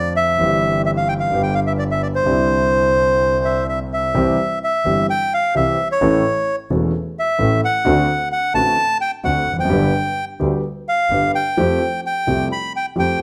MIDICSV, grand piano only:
0, 0, Header, 1, 2, 480
1, 0, Start_track
1, 0, Key_signature, 0, "major"
1, 0, Tempo, 468384
1, 409, Time_signature, 4, 2, 24, 8
1, 5696, Tempo, 462963
1, 13642, End_track
2, 0, Start_track
2, 0, Title_t, "Grand piano"
2, 0, Program_c, 0, 0
2, 0, Note_on_c, 0, 41, 63
2, 0, Note_on_c, 0, 50, 55
2, 0, Note_on_c, 0, 53, 60
2, 0, Note_on_c, 0, 57, 47
2, 0, Note_on_c, 0, 60, 49
2, 0, Note_on_c, 0, 65, 56
2, 303, Note_off_c, 0, 50, 0
2, 309, Note_off_c, 0, 57, 0
2, 311, Note_off_c, 0, 41, 0
2, 311, Note_off_c, 0, 53, 0
2, 314, Note_off_c, 0, 60, 0
2, 324, Note_off_c, 0, 65, 0
2, 391, Note_on_c, 0, 52, 55
2, 399, Note_on_c, 0, 55, 49
2, 408, Note_on_c, 0, 31, 67
2, 408, Note_on_c, 0, 43, 60
2, 414, Note_on_c, 0, 60, 50
2, 432, Note_on_c, 0, 67, 59
2, 1304, Note_off_c, 0, 52, 0
2, 1308, Note_off_c, 0, 55, 0
2, 1313, Note_off_c, 0, 31, 0
2, 1313, Note_off_c, 0, 43, 0
2, 1315, Note_off_c, 0, 60, 0
2, 1324, Note_off_c, 0, 67, 0
2, 1336, Note_on_c, 0, 50, 53
2, 1351, Note_on_c, 0, 55, 48
2, 1356, Note_on_c, 0, 43, 62
2, 1358, Note_on_c, 0, 31, 61
2, 1362, Note_on_c, 0, 59, 47
2, 1377, Note_on_c, 0, 67, 58
2, 2256, Note_off_c, 0, 50, 0
2, 2263, Note_off_c, 0, 55, 0
2, 2266, Note_off_c, 0, 43, 0
2, 2267, Note_off_c, 0, 31, 0
2, 2269, Note_off_c, 0, 59, 0
2, 2277, Note_off_c, 0, 67, 0
2, 2292, Note_on_c, 0, 50, 57
2, 2309, Note_on_c, 0, 55, 50
2, 2316, Note_on_c, 0, 36, 66
2, 2316, Note_on_c, 0, 48, 62
2, 2326, Note_on_c, 0, 60, 49
2, 2337, Note_on_c, 0, 64, 62
2, 4146, Note_off_c, 0, 50, 0
2, 4155, Note_off_c, 0, 55, 0
2, 4158, Note_off_c, 0, 36, 0
2, 4158, Note_off_c, 0, 48, 0
2, 4163, Note_off_c, 0, 60, 0
2, 4169, Note_off_c, 0, 64, 0
2, 4246, Note_on_c, 0, 48, 79
2, 4247, Note_on_c, 0, 52, 62
2, 4248, Note_on_c, 0, 55, 58
2, 4248, Note_on_c, 0, 60, 58
2, 4250, Note_on_c, 0, 36, 77
2, 4251, Note_on_c, 0, 67, 74
2, 4452, Note_off_c, 0, 48, 0
2, 4453, Note_off_c, 0, 52, 0
2, 4453, Note_off_c, 0, 55, 0
2, 4453, Note_off_c, 0, 60, 0
2, 4454, Note_off_c, 0, 36, 0
2, 4455, Note_off_c, 0, 67, 0
2, 4972, Note_on_c, 0, 55, 42
2, 4973, Note_on_c, 0, 43, 55
2, 4973, Note_on_c, 0, 52, 45
2, 4974, Note_on_c, 0, 31, 50
2, 4977, Note_on_c, 0, 67, 50
2, 4980, Note_on_c, 0, 60, 37
2, 5175, Note_off_c, 0, 43, 0
2, 5175, Note_off_c, 0, 52, 0
2, 5175, Note_off_c, 0, 55, 0
2, 5176, Note_off_c, 0, 31, 0
2, 5177, Note_off_c, 0, 67, 0
2, 5179, Note_off_c, 0, 60, 0
2, 5685, Note_on_c, 0, 55, 41
2, 5688, Note_on_c, 0, 36, 50
2, 5689, Note_on_c, 0, 52, 44
2, 5689, Note_on_c, 0, 60, 40
2, 5690, Note_on_c, 0, 48, 51
2, 5692, Note_on_c, 0, 67, 52
2, 5892, Note_off_c, 0, 55, 0
2, 5894, Note_off_c, 0, 36, 0
2, 5894, Note_off_c, 0, 52, 0
2, 5894, Note_off_c, 0, 60, 0
2, 5895, Note_off_c, 0, 48, 0
2, 5896, Note_off_c, 0, 67, 0
2, 6165, Note_on_c, 0, 52, 71
2, 6168, Note_on_c, 0, 45, 81
2, 6169, Note_on_c, 0, 33, 82
2, 6169, Note_on_c, 0, 57, 64
2, 6173, Note_on_c, 0, 61, 60
2, 6174, Note_on_c, 0, 69, 75
2, 6369, Note_off_c, 0, 52, 0
2, 6370, Note_off_c, 0, 45, 0
2, 6371, Note_off_c, 0, 33, 0
2, 6371, Note_off_c, 0, 57, 0
2, 6372, Note_off_c, 0, 61, 0
2, 6373, Note_off_c, 0, 69, 0
2, 6883, Note_on_c, 0, 52, 43
2, 6883, Note_on_c, 0, 57, 42
2, 6885, Note_on_c, 0, 40, 55
2, 6886, Note_on_c, 0, 28, 52
2, 6887, Note_on_c, 0, 61, 41
2, 6888, Note_on_c, 0, 69, 51
2, 7086, Note_off_c, 0, 52, 0
2, 7086, Note_off_c, 0, 57, 0
2, 7087, Note_off_c, 0, 40, 0
2, 7088, Note_off_c, 0, 28, 0
2, 7088, Note_off_c, 0, 61, 0
2, 7088, Note_off_c, 0, 69, 0
2, 7590, Note_on_c, 0, 33, 58
2, 7590, Note_on_c, 0, 52, 46
2, 7593, Note_on_c, 0, 57, 44
2, 7595, Note_on_c, 0, 45, 55
2, 7597, Note_on_c, 0, 69, 51
2, 7598, Note_on_c, 0, 61, 45
2, 7797, Note_off_c, 0, 33, 0
2, 7797, Note_off_c, 0, 52, 0
2, 7799, Note_off_c, 0, 57, 0
2, 7800, Note_off_c, 0, 45, 0
2, 7801, Note_off_c, 0, 61, 0
2, 7801, Note_off_c, 0, 69, 0
2, 8070, Note_on_c, 0, 50, 84
2, 8072, Note_on_c, 0, 38, 86
2, 8073, Note_on_c, 0, 57, 65
2, 8076, Note_on_c, 0, 60, 64
2, 8077, Note_on_c, 0, 66, 76
2, 8277, Note_off_c, 0, 38, 0
2, 8277, Note_off_c, 0, 57, 0
2, 8278, Note_off_c, 0, 60, 0
2, 8279, Note_off_c, 0, 50, 0
2, 8279, Note_off_c, 0, 66, 0
2, 8785, Note_on_c, 0, 50, 47
2, 8786, Note_on_c, 0, 57, 45
2, 8789, Note_on_c, 0, 33, 53
2, 8789, Note_on_c, 0, 45, 54
2, 8792, Note_on_c, 0, 66, 52
2, 8793, Note_on_c, 0, 60, 44
2, 8990, Note_off_c, 0, 50, 0
2, 8991, Note_off_c, 0, 57, 0
2, 8992, Note_off_c, 0, 33, 0
2, 8992, Note_off_c, 0, 45, 0
2, 8993, Note_off_c, 0, 66, 0
2, 8994, Note_off_c, 0, 60, 0
2, 9507, Note_on_c, 0, 50, 52
2, 9508, Note_on_c, 0, 60, 42
2, 9512, Note_on_c, 0, 38, 53
2, 9513, Note_on_c, 0, 57, 44
2, 9515, Note_on_c, 0, 66, 52
2, 9713, Note_off_c, 0, 50, 0
2, 9713, Note_off_c, 0, 60, 0
2, 9715, Note_off_c, 0, 38, 0
2, 9716, Note_off_c, 0, 57, 0
2, 9717, Note_off_c, 0, 66, 0
2, 9817, Note_on_c, 0, 40, 50
2, 9870, Note_on_c, 0, 41, 61
2, 9876, Note_off_c, 0, 40, 0
2, 9931, Note_on_c, 0, 42, 76
2, 9932, Note_off_c, 0, 41, 0
2, 9983, Note_on_c, 0, 43, 80
2, 9983, Note_on_c, 0, 50, 71
2, 9983, Note_on_c, 0, 55, 68
2, 9985, Note_on_c, 0, 59, 63
2, 9986, Note_on_c, 0, 31, 84
2, 9987, Note_on_c, 0, 67, 77
2, 9993, Note_off_c, 0, 42, 0
2, 10191, Note_off_c, 0, 43, 0
2, 10191, Note_off_c, 0, 50, 0
2, 10191, Note_off_c, 0, 55, 0
2, 10192, Note_off_c, 0, 31, 0
2, 10192, Note_off_c, 0, 59, 0
2, 10193, Note_off_c, 0, 67, 0
2, 10711, Note_on_c, 0, 50, 52
2, 10712, Note_on_c, 0, 55, 43
2, 10714, Note_on_c, 0, 67, 50
2, 10715, Note_on_c, 0, 38, 52
2, 10717, Note_on_c, 0, 59, 42
2, 10917, Note_off_c, 0, 55, 0
2, 10918, Note_off_c, 0, 38, 0
2, 10918, Note_off_c, 0, 50, 0
2, 10918, Note_off_c, 0, 67, 0
2, 10920, Note_off_c, 0, 59, 0
2, 11447, Note_on_c, 0, 50, 44
2, 11451, Note_on_c, 0, 43, 54
2, 11452, Note_on_c, 0, 55, 41
2, 11453, Note_on_c, 0, 31, 50
2, 11453, Note_on_c, 0, 59, 39
2, 11453, Note_on_c, 0, 67, 50
2, 11651, Note_off_c, 0, 50, 0
2, 11653, Note_off_c, 0, 43, 0
2, 11654, Note_off_c, 0, 31, 0
2, 11654, Note_off_c, 0, 55, 0
2, 11654, Note_off_c, 0, 59, 0
2, 11654, Note_off_c, 0, 67, 0
2, 11933, Note_on_c, 0, 53, 79
2, 11935, Note_on_c, 0, 57, 64
2, 11936, Note_on_c, 0, 41, 76
2, 11937, Note_on_c, 0, 60, 63
2, 11938, Note_on_c, 0, 67, 74
2, 12137, Note_off_c, 0, 41, 0
2, 12137, Note_off_c, 0, 53, 0
2, 12137, Note_off_c, 0, 57, 0
2, 12138, Note_off_c, 0, 60, 0
2, 12139, Note_off_c, 0, 67, 0
2, 12654, Note_on_c, 0, 48, 55
2, 12656, Note_on_c, 0, 53, 45
2, 12656, Note_on_c, 0, 57, 41
2, 12658, Note_on_c, 0, 36, 52
2, 12659, Note_on_c, 0, 60, 44
2, 12660, Note_on_c, 0, 67, 47
2, 12857, Note_off_c, 0, 48, 0
2, 12858, Note_off_c, 0, 53, 0
2, 12858, Note_off_c, 0, 57, 0
2, 12860, Note_off_c, 0, 36, 0
2, 12860, Note_off_c, 0, 60, 0
2, 12860, Note_off_c, 0, 67, 0
2, 13366, Note_on_c, 0, 53, 51
2, 13366, Note_on_c, 0, 57, 41
2, 13370, Note_on_c, 0, 41, 55
2, 13370, Note_on_c, 0, 60, 40
2, 13370, Note_on_c, 0, 67, 52
2, 13573, Note_off_c, 0, 57, 0
2, 13574, Note_off_c, 0, 41, 0
2, 13574, Note_off_c, 0, 53, 0
2, 13574, Note_off_c, 0, 60, 0
2, 13574, Note_off_c, 0, 67, 0
2, 13642, End_track
0, 0, End_of_file